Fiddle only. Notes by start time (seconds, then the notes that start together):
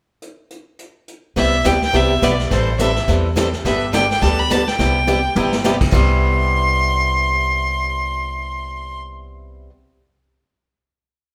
1.36 E5
1.66 G5
1.84 G5
1.96 E5
2.23 D5
2.52 C5
2.80 E5
3.65 E5
3.93 G5
4.11 G5
4.21 A5
4.39 B5
4.52 A5
4.67 G5
5.93 C6